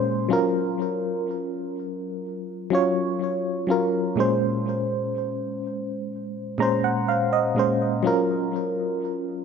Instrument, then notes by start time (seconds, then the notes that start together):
fm electric piano
Already playing: A#2 G#3 C#4 A#4 C5
0.29 F#3 C#4 F4
0.33 A#4
2.70 F#3 C#4 F4
2.75 C#5
3.67 F#3 C#4 F4
3.71 A#4
4.16 A#2 G#3 C#4
4.20 C5
6.58 A#2 G#3 C#4 A#5
6.62 C5
6.84 F#5
7.08 F5
7.33 D#5
7.55 A#2 G#3 C#4
7.59 C5
8.03 F#3 C#4 F4
8.07 A#4